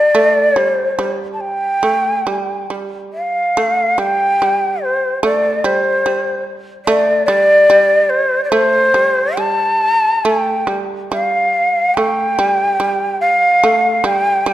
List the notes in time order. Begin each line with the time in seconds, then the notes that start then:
Already playing: G3 D5
0.15 A3
0.47 C#5
0.56 G3
0.64 C5
0.99 G3
1.34 A5
1.41 G5
1.83 A3
2.27 G3
2.70 G3
3.13 F5
3.57 A3
3.98 G3 G5
4.42 G3
4.84 C5
5.23 A3 D5
5.64 G3 C5
6.06 G3
6.85 A3 D5
7.26 G3 D5
7.70 G3
8.10 C5
8.44 D5
8.50 A3 C5
8.94 G3
9.37 G3 A5
10.25 A3 G5
10.67 G3
11.11 G3 F5
11.94 A3 G5
12.39 G3
12.80 G3
13.21 F5
13.63 A3
14.04 G3 G5
14.46 G3 F5